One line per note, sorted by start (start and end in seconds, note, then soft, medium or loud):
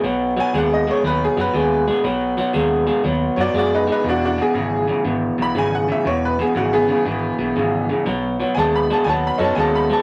0.04 0.38 B1 medium
0.04 0.34 B2 medium
0.04 0.34 F#3 medium
0.36 0.52 B2 medium
0.36 0.52 F#3 medium
0.36 0.55 G#5 medium
0.54 0.88 D#2 medium
0.54 0.84 B2 medium
0.54 0.84 G#3 medium
0.58 0.72 F#5 medium
0.74 0.88 D#5 medium
0.87 1.02 B2 medium
0.87 1.02 G#3 medium
0.87 1.05 C#5 medium
1.04 1.26 D#2 loud
1.04 1.34 B2 medium
1.04 1.34 F#3 medium
1.04 1.22 B4 medium
1.24 1.39 G#4 medium
1.37 1.48 F#2 medium
1.37 1.52 B2 medium
1.37 1.52 F#3 medium
1.37 2.86 B4 medium
1.54 1.88 D#2 medium
1.54 1.84 B2 medium
1.54 1.84 G#3 medium
1.87 2.03 B2 medium
1.87 2.03 G#3 medium
2.04 2.38 B1 medium
2.04 2.34 B2 medium
2.04 2.34 F#3 medium
2.37 2.52 B2 medium
2.37 2.53 F#3 medium
2.54 2.88 D#2 medium
2.54 2.84 B2 medium
2.54 2.84 G#3 medium
2.87 3.02 B2 medium
2.87 3.03 G#3 medium
3.04 3.27 D#2 medium
3.04 3.34 B2 medium
3.04 3.35 F#3 medium
3.36 3.49 F#2 medium
3.36 3.53 B2 medium
3.36 3.53 F#3 medium
3.36 3.55 F#4 medium
3.36 3.40 C#5 medium
3.41 3.56 D5 medium
3.54 3.88 F#2 medium
3.54 3.84 B2 medium
3.54 3.85 G#3 medium
3.58 3.72 F#4 medium
3.58 3.73 D5 medium
3.75 3.89 D#4 medium
3.75 3.89 B4 medium
3.87 4.03 B2 medium
3.87 4.03 G#3 medium
3.92 4.06 D#4 medium
3.92 4.06 B4 medium
4.04 4.38 E1 medium
4.04 4.34 E2 medium
4.04 4.35 B2 medium
4.09 4.22 D4 medium
4.09 4.24 F#4 medium
4.25 4.39 D4 medium
4.25 4.40 F#4 medium
4.38 4.53 E2 medium
4.38 4.53 B2 medium
4.38 4.89 G#4 medium
4.54 4.89 G#1 medium
4.54 4.85 E2 medium
4.54 4.85 C#3 medium
4.88 5.03 E2 medium
4.88 5.04 C#3 medium
5.05 5.27 G#1 medium
5.05 5.35 E2 medium
5.05 5.35 B2 medium
5.38 5.50 B1 medium
5.38 5.54 E2 medium
5.38 5.54 B2 medium
5.42 5.57 B5 medium
5.55 5.89 G#1 medium
5.55 5.85 E2 medium
5.55 5.85 C#3 medium
5.55 5.73 G#5 medium
5.75 5.90 F#5 medium
5.88 6.04 E2 medium
5.88 6.04 C#3 medium
5.88 6.06 E5 medium
6.05 6.39 E1 medium
6.05 6.35 E2 medium
6.05 6.36 B2 medium
6.05 6.22 C#5 medium
6.25 6.40 B4 medium
6.39 6.54 E2 medium
6.39 6.54 B2 medium
6.39 6.56 G#4 medium
6.55 6.89 G#1 medium
6.55 6.85 E2 medium
6.55 6.86 C#3 medium
6.55 6.73 F#4 medium
6.73 8.19 B3 medium
6.73 8.19 G#4 medium
6.88 7.04 E2 medium
6.88 7.04 C#3 medium
7.05 7.28 G#1 loud
7.05 7.35 E2 medium
7.05 7.36 B2 medium
7.39 7.50 B1 medium
7.39 7.54 E2 medium
7.39 7.54 B2 medium
7.56 7.90 G#1 medium
7.56 7.86 E2 medium
7.56 7.86 C#3 medium
7.89 8.04 E2 medium
7.89 8.05 C#3 medium
8.06 8.40 B1 medium
8.06 8.36 B2 medium
8.06 8.36 F#3 medium
8.40 8.55 B2 medium
8.40 8.55 F#3 medium
8.55 8.90 D#2 medium
8.55 8.86 B2 medium
8.55 8.87 G#3 medium
8.55 8.58 G#5 medium
8.59 8.74 A5 medium
8.76 8.90 B5 medium
8.90 9.05 B2 medium
8.90 9.05 G#3 medium
8.90 9.07 A5 medium
9.04 9.29 D#2 medium
9.04 9.36 B2 medium
9.04 9.37 F#3 medium
9.04 9.08 G#5 medium
9.09 9.24 A5 medium
9.27 9.41 B5 medium
9.38 9.51 F#2 medium
9.38 9.55 B2 medium
9.38 9.55 F#3 medium
9.38 10.02 C#4 medium
9.38 10.02 D#4 medium
9.38 10.02 F#4 medium
9.38 10.02 A4 medium
9.43 9.58 A5 medium
9.55 9.90 D#2 medium
9.55 9.86 B2 medium
9.55 9.86 G#3 medium
9.55 9.59 G#5 medium
9.59 9.74 A5 medium
9.75 9.91 B5 medium
9.89 10.02 B2 medium
9.89 10.02 G#3 medium
9.89 10.02 A5 medium